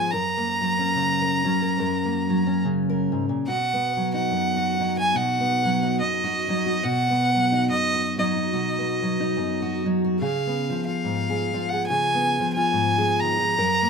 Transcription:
Already playing: steel-string acoustic guitar F3, fiddle G#5
0.11 steel-string acoustic guitar F#2 A#4, fiddle A#5
0.37 steel-string acoustic guitar A#3
0.61 steel-string acoustic guitar F#3
0.79 steel-string acoustic guitar C#4
0.95 steel-string acoustic guitar C#3
1.21 steel-string acoustic guitar A#4
1.45 steel-string acoustic guitar F#3 C#4
1.62 steel-string acoustic guitar A#4
1.79 steel-string acoustic guitar F#2 A#4
2.05 steel-string acoustic guitar A#3
2.30 steel-string acoustic guitar F#3
2.47 steel-string acoustic guitar C#4
2.65 steel-string acoustic guitar C#3
2.90 steel-string acoustic guitar A#4
3.12 steel-string acoustic guitar G#2
3.29 steel-string acoustic guitar A#2
3.47 steel-string acoustic guitar B2 F#4, fiddle F#5
3.74 steel-string acoustic guitar B3
3.97 steel-string acoustic guitar F#3
4.14 steel-string acoustic guitar D#4, fiddle F#5
4.30 steel-string acoustic guitar F#2
4.56 steel-string acoustic guitar F#4
4.80 steel-string acoustic guitar F#3 D#4
4.97 steel-string acoustic guitar F#4, fiddle G#5
5.14 steel-string acoustic guitar B2 F#4, fiddle F#5
5.41 steel-string acoustic guitar B3
5.65 steel-string acoustic guitar F#3
5.83 steel-string acoustic guitar D#4
6.00 steel-string acoustic guitar F#2, fiddle D#5
6.24 steel-string acoustic guitar F#4
6.49 steel-string acoustic guitar F#3 D#4
6.66 steel-string acoustic guitar F#4
6.83 steel-string acoustic guitar B2 F#4, fiddle F#5
7.10 steel-string acoustic guitar B3
7.35 steel-string acoustic guitar F#3
7.52 steel-string acoustic guitar D#4
7.70 steel-string acoustic guitar F#2, fiddle D#5
7.95 steel-string acoustic guitar F#4
8.18 steel-string acoustic guitar F#3 D#4, fiddle D#5
8.36 steel-string acoustic guitar F#4
8.53 steel-string acoustic guitar B2 F#4
8.79 steel-string acoustic guitar B3
9.02 steel-string acoustic guitar F#3
9.20 steel-string acoustic guitar D#4
9.37 steel-string acoustic guitar F#2
9.62 steel-string acoustic guitar F#4
9.86 steel-string acoustic guitar F#3 D#4
10.04 steel-string acoustic guitar F#4
10.20 steel-string acoustic guitar C#3 G#4, fiddle F5
10.47 steel-string acoustic guitar B3
10.70 steel-string acoustic guitar F3
10.87 steel-string acoustic guitar F4, fiddle F5
11.04 steel-string acoustic guitar G#2
11.30 steel-string acoustic guitar G#4
11.53 steel-string acoustic guitar F3 F4
11.69 fiddle F#5
11.73 steel-string acoustic guitar G#4
11.87 steel-string acoustic guitar C#3 G#4, fiddle G#5
12.15 steel-string acoustic guitar B3
12.40 steel-string acoustic guitar F3
12.53 steel-string acoustic guitar F4, fiddle G#5
12.73 steel-string acoustic guitar G#2
12.98 steel-string acoustic guitar G#4
13.21 steel-string acoustic guitar D#3, fiddle A#5
13.40 steel-string acoustic guitar F3
13.58 steel-string acoustic guitar F#2 A#4
13.82 steel-string acoustic guitar A#3

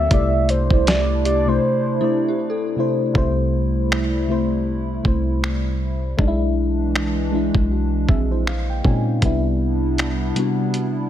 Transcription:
Already playing: fm electric piano D3 A#3 C4 F#4 F5, analog synth pad F#3 A#3, soft synth lead E5
0.10 808-style bass C2, fm electric piano C3 A3 E4 D5, analog synth pad C3 A3 D4 E4, synth bell G4, kick, closed hi-hat
0.49 soft synth lead C5, closed hi-hat
0.70 808-style bass C2, fm electric piano C3 A3 E4 D5, kick
0.87 soft synth lead D5, snare, closed hi-hat
1.25 synth bell G4, soft synth lead D5, closed hi-hat
1.46 fm electric piano C3 A3 E4 D5, soft synth lead C5
2.00 fm electric piano C3 A3 E4 D5, synth bell E4
2.28 synth bell G4
2.50 synth bell A4
2.76 fm electric piano C3 A3 E4 C5
3.14 808-style bass C2, fm electric piano C3 A3 E4 C5, analog synth pad C3 G3 A3 E4, kick
3.92 finger snap
4.28 fm electric piano C3 A3 E4 C5
5.04 808-style bass C2, fm electric piano C3 A3 E4 C5, kick
5.44 finger snap
6.17 808-style bass B1, analog synth pad E3 G#3 D4, fm electric piano G#3 D4 D#4, kick
6.28 fm electric piano E4
6.96 finger snap
7.31 fm electric piano G#3 D4 E4
7.55 808-style bass B1, kick
7.72 fm electric piano F#4
8.09 808-style bass A#1, fm electric piano C4 G#4 E5, kick
8.31 fm electric piano E4 C5
8.46 analog synth pad C#3 A#3, fm electric piano F5, finger snap
8.70 fm electric piano G5
8.84 fm electric piano A#2 G#3 C4 C#4 D#4 G#5, 808-style bass A#2, kick
9.22 808-style bass C2, fm electric piano C3 G3 B3 D4 E4, analog synth pad C3 G3 B3 D4 E4, kick, closed hi-hat
9.98 finger snap, closed hi-hat
10.35 fm electric piano C3 G3 B3 D4 F#4, closed hi-hat
10.74 closed hi-hat

